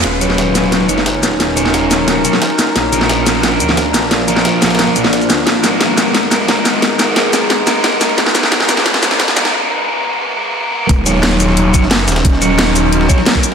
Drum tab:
HH |x---x---x---x---x---x---x---x---|x---x---x---x---x---x---x---x---|x---x---x---x---x---x---x---x---|x---x---x---xxxxx---x---x---x---|
SH |----x-------x-------x-------x---|----x-------x-------x-------x---|----x-------x-------x-------x---|----x-------x-------x-----x-x---|
SD |o---o-o-o---o-o-o-o---o-o-o-o-o-|o-o-o-o-o---o---o---o-o-o-o-o-o-|o---o-o-o---o-o-o-o---o-o-o-o-o-|o-o-o-o-o---ooooo-o---o-o-o-o-o-|
BD |--------------------------------|--------------------------------|--------------------------------|--------------------------------|

HH |x---x---x---x---x---x---x---x---|x---x---x---x---x---x---x---x---|x---x---x---x---x---x---x---x---|--------------------------------|
SH |----x-------x-------x-------x---|----x-------x-------x-------x---|----x-------x-------x-------x---|--------------------------------|
SD |o---o---o---o-o-o-o-o-o-o-o-o-o-|o-o-o---o---o---o---o---o-o-o-o-|o-o-o-o-o-o-o-o-o-o-o-o-o-o-o-o-|--------------------------------|
BD |--------------------------------|--------------------------------|--------------------------------|--------------------------------|

HH |x---x---x---x---x---x---x---xxx-|x---x---x---x---x---x---x---x---|
SH |----x-------x-------x-------x---|----x-------x-------x-------x---|
SD |----o---o-----o-------o-o-o-ooo-|--o-o---o---o-----o---o-o-o-----|
BD |o-------------------o-----------|o-------------------o-----o-----|